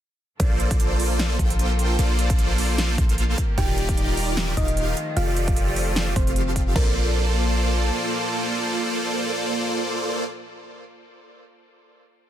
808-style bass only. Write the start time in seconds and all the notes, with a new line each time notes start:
0.40 A#1
1.39 A#1
1.99 A#1
2.98 A#1
3.58 D#1
4.57 D#1
5.17 F1
6.16 F1
6.76 A#1